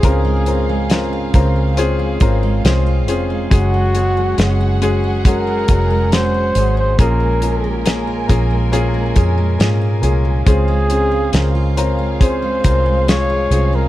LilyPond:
<<
  \new Staff \with { instrumentName = "String section" } { \time 4/4 \key des \major \tempo 4 = 69 <aes' f''>1 | <aes' ges''>1 | <bes' aes''>1 | <aes' f''>1 | }
  \new Staff \with { instrumentName = "Flugelhorn" } { \time 4/4 \key des \major aes'4 r2. | ges'4. r8 bes'4 c''8. c''16 | bes'4 r2. | aes'4. r8 c''4 des''8. bes'16 | }
  \new Staff \with { instrumentName = "Grand piano" } { \time 4/4 \key des \major <c' des' f' bes'>8 <c' des' f' bes'>8 <c' des' f' bes'>8 <c' des' f' bes'>8 <c' des' f' aes'>8 <c' des' f' bes'>8 <c' des' f' aes'>8 <c' des' f' aes'>8 | <aes des' ges' aes'>8 <aes des' ges' aes'>8 <aes des' ges' aes'>8 <aes des' ges' aes'>8 <aes des' ges' aes'>8 <aes des' ges' bes'>8 <aes des' ges' aes'>8 <aes des' ges' aes'>8 | <bes des' f' aes'>8 <bes des' f' bes'>8 <bes des' f' aes'>8 <bes des' f' aes'>8 <bes des' f' aes'>8 <bes des' f' aes'>8 <bes des' f' aes'>8 <bes des' f' aes'>8 | <c' des' f' aes'>8 <c' des' f' aes'>8 <c' des' f' bes'>8 <c' des' f' bes'>8 <c' des' f' aes'>8 <c' des' f' bes'>8 <aes des' f' aes'>8 <c' des' f' aes'>8 | }
  \new Staff \with { instrumentName = "Grand piano" } { \clef bass \time 4/4 \key des \major aes,4. r2 r8 | des4. r2 r8 | <bes, f>4. r2 r8 | <des aes>4. r2 r8 | }
  \new Staff \with { instrumentName = "Steel-string acoustic guitar" } { \time 4/4 \key des \major <des aes c' f'>16 aes16 c'16 aes16 c'16 f'16 c'16 aes8 aes16 c'16 aes16 c'16 f'16 c'16 aes16 | ges16 aes16 des'16 aes16 des'16 ges'16 des'16 aes16 ges16 aes16 des'16 aes16 des'16 ges'16 des'16 aes16 | bes,16 aes16 des'16 aes16 des'16 f'16 des'16 aes16 bes,16 aes16 des'16 aes16 des'16 f'16 des'16 aes16 | des16 aes16 c'16 aes16 c'16 f'16 c'16 aes8 aes16 c'16 aes8 f'16 c'16 aes16 | }
  \new Staff \with { instrumentName = "Fingered electric bass" } { \clef bass \time 4/4 \key des \major des,4. des,4 aes,,8 c,8 f,,8 | ges,,4 ges,,4. f,,4 aes,,8 | bes,,4. bes,,4 f,8 aes,8 c,8 | des,4 des,4. c,4 c,8 | }
  \new DrumStaff \with { instrumentName = "Drums" } \drummode { \time 4/4 <hh bd>8 hh8 <hh sn>8 <hh bd>8 hh8 <hh bd>8 <hh sn>8 hh8 | <hh bd>8 hh8 <hh sn>8 hh8 <hh bd>8 <hh bd>8 <hh sn>8 hh8 | <hh bd>8 hh8 <hh sn>8 <hh bd>8 hh8 <hh bd>8 <hh sn>8 hh8 | <hh bd>8 hh8 <hh sn>8 hh8 <hh bd>8 <hh bd>8 <hh sn>8 hh8 | }
>>